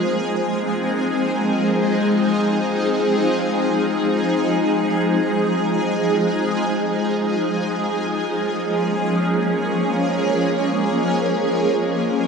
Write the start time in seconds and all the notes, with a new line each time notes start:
Already playing: F3 G#3 A#3 C4 D#4 G#4
7.73 C#4
7.89 A#3